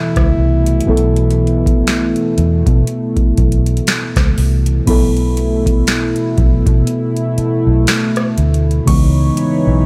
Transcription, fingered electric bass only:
0.17 0.34 C#2 medium
0.38 0.79 C2 medium
0.88 2.13 B1 loud
2.38 2.62 E2 medium
2.67 2.84 B2 medium
3.17 muted fingered electric bass stroke soft
3.38 3.79 B1 medium
4.17 4.34 C#2 medium
4.38 4.79 C2 medium
4.88 6.13 B1 loud
6.38 6.62 B1 medium
6.67 6.84 B2 loud
7.38 muted fingered electric bass stroke soft
7.67 7.84 B1 medium
8.38 8.79 D2 medium
8.88 9.29 C#2 loud
9.67 9.86 B1 medium

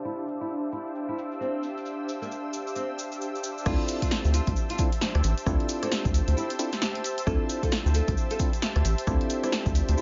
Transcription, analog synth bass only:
3.66 3.76 D2 loud
4.25 4.41 D2 medium
4.47 4.54 D2 medium
5.15 5.22 D2 medium
5.24 5.34 A1 loud
5.46 5.57 D2 loud
6.05 6.21 D2 medium
6.28 6.34 D2 medium
7.27 7.37 D2 loud
7.86 8.01 D2 medium
8.08 8.15 D2 medium
8.76 8.83 D2 medium
8.85 8.95 A1 loud
9.07 9.17 D2 loud
9.66 9.82 D2 medium
9.89 9.95 D2 medium

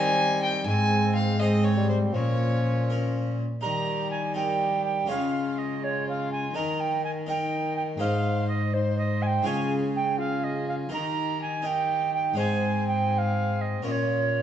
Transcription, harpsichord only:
0.00 0.64 D#3 medium
0.00 0.48 D#4 medium
0.00 0.48 C5 medium
0.67 2.11 G#2 medium
1.41 1.94 G#3 medium
1.41 1.94 D#4 medium
1.41 1.94 C5 medium
2.14 3.39 A#2 medium
2.90 3.43 C#4 medium
2.90 3.43 A#4 medium
3.61 5.06 D#3 medium
3.61 4.33 D#4 soft
3.61 4.34 A#4 medium
4.34 5.06 D#4 soft
4.34 5.07 A#4 soft
5.06 6.52 C#3 medium
5.06 6.50 G#3 soft
5.06 6.50 F4 soft
5.06 6.51 C#5 soft
6.54 7.98 D#3 medium
6.54 7.25 D#4 medium
6.54 7.26 A#4 medium
7.26 7.98 D#4 soft
7.26 7.99 A#4 soft
7.97 9.43 G#2 medium
7.97 9.41 G#3 medium
7.97 9.42 D#4 medium
7.97 9.42 C5 medium
9.42 10.86 G#3 medium
9.42 10.87 F4 medium
9.42 10.87 C#5 medium
9.47 10.88 C#3 medium
10.89 12.33 D#3 medium
10.89 11.61 D#4 medium
10.89 11.62 A#4 medium
11.62 12.34 D#4 soft
11.62 12.35 A#4 soft
12.34 13.79 G#3 medium
12.34 13.80 D#4 soft
12.34 13.80 C5 medium
12.38 13.81 G#2 medium
13.82 14.42 A#2 soft
13.82 14.42 C#4 soft
13.82 14.42 A#4 soft

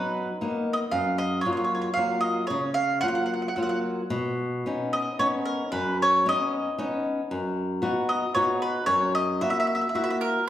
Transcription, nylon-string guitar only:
0.00 0.29 F#3 soft
0.00 0.29 B3 soft
0.00 0.29 D#4 medium
0.41 0.82 A#3 soft
0.41 0.83 B3 soft
0.41 0.83 D#4 medium
0.92 1.42 F#2 medium
1.45 1.87 F#3 soft
1.45 1.87 A#3 soft
1.45 1.87 F4 soft
1.97 2.40 F#3 soft
1.97 2.40 A#3 soft
1.97 2.40 F4 medium
2.50 3.02 C#3 medium
3.02 3.46 F#3 soft
3.02 3.47 A#3 soft
3.02 3.47 F4 soft
3.57 4.00 F#3 soft
3.57 4.01 A#3 soft
3.57 4.01 F4 soft
4.10 4.63 B2 medium
4.66 5.08 B3 soft
4.66 5.09 C#4 soft
4.66 5.09 D#4 medium
5.19 5.61 B3 medium
5.19 5.62 C#4 soft
5.19 5.62 D#4 medium
5.72 6.24 F#2 medium
6.26 6.68 B3 soft
6.26 6.68 C#4 soft
6.26 6.68 D#4 soft
6.78 7.20 B3 medium
6.78 7.20 C#4 soft
6.78 7.21 D#4 medium
7.31 7.82 F#2 medium
7.82 8.24 B3 medium
7.82 8.24 D#4 soft
7.82 8.25 F#4 medium
8.36 8.78 B3 soft
8.36 8.78 D#4 soft
8.36 8.78 F#4 medium
8.87 9.39 F#2 medium
9.41 9.84 A#3 soft
9.41 9.84 E4 soft
9.41 9.84 F#4 medium
9.95 10.37 A#3 soft
9.95 10.38 E4 soft
9.95 10.38 F#4 medium

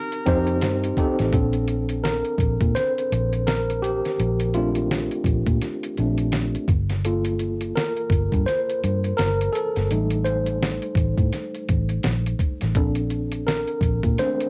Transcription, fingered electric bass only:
0.28 0.63 F2 medium
0.63 0.91 G2 medium
1.20 1.31 A1 medium
1.34 2.22 A#1 loud
2.39 2.56 A#1 medium
2.62 2.73 A#2 medium
3.12 4.00 A#1 medium
4.20 5.07 A#1 loud
5.25 5.42 A#1 medium
5.47 5.59 A#2 medium
5.99 6.55 A#1 medium
6.69 7.72 G1 loud
8.11 8.28 G1 medium
8.33 8.44 G2 loud
8.84 9.12 G2 medium
9.20 9.48 G1 medium
9.77 9.88 G1 medium
9.91 10.79 A1 loud
10.96 11.13 A1 medium
11.19 11.30 A2 medium
11.70 11.98 A1 medium
12.05 12.33 A#1 medium
12.62 12.76 A1 medium
12.76 13.64 A#1 loud
13.82 13.99 A#1 medium
14.04 14.16 A#2 medium

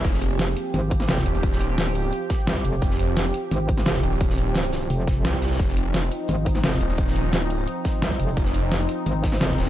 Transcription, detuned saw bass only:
0.05 0.55 F1 loud
1.26 1.86 D#1 loud
1.86 2.11 D1 loud
2.82 3.33 F1 medium
4.03 4.89 D#1 loud
5.25 5.58 C2 loud
5.59 6.10 F1 medium
6.81 7.41 D#1 loud
7.41 7.66 D1 loud
8.37 8.88 F1 loud
9.58 9.69 D#1 medium

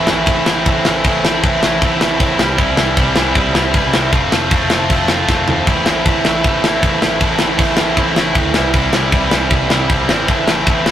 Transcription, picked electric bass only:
0.10 0.26 A1 loud
0.27 0.44 A1 loud
0.49 0.65 A1 medium
0.66 0.83 A1 medium
0.88 1.04 A1 medium
1.05 1.21 A1 medium
1.26 1.42 A1 medium
1.44 1.61 A1 medium
1.64 1.80 A1 loud
1.82 2.16 A1 loud
2.20 2.37 A1 medium
2.40 2.56 C2 medium
2.58 2.75 C2 medium
2.77 2.94 C2 loud
2.97 3.14 C2 medium
3.16 3.33 C2 loud
3.35 3.52 C2 loud
3.53 3.71 C2 medium
3.74 3.91 C2 medium
3.93 4.14 C2 medium
4.13 4.29 F1 loud
4.32 4.48 F1 medium
4.51 4.68 F1 medium
4.71 4.87 F1 loud
4.90 5.23 F1 loud
5.28 5.62 F1 medium
5.67 5.84 A1 medium
5.87 6.03 A1 medium
6.06 6.22 A1 loud
6.24 6.41 A1 medium
6.45 6.61 A1 medium
6.64 6.80 A1 medium
6.83 6.99 A1 loud
7.04 7.19 A1 loud
7.20 7.37 A1 medium
7.42 7.58 A1 medium
7.58 7.75 A1 loud
7.80 7.96 A1 medium
7.97 8.31 A1 loud
8.35 8.52 D2 medium
8.57 8.73 C2 loud
8.74 8.91 C2 medium
8.94 9.11 C2 medium
9.12 9.29 C2 loud
9.32 9.49 C2 loud
9.51 9.68 C2 medium
9.71 9.88 C2 medium
9.89 10.06 C2 medium
10.11 10.27 G#1 loud
10.28 10.45 A1 medium
10.48 10.65 A1 loud
10.66 10.84 A1 loud
10.86 10.91 A1 medium

